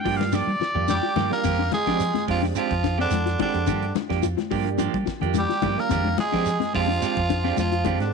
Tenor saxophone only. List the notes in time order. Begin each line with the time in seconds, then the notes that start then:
0.90 G4
1.33 A#4
1.74 G#4
2.31 F4
2.58 F4
3.01 D4
3.42 D4
5.38 G4
5.80 A#4
6.20 G#4
6.75 F4
7.59 F4
8.01 D4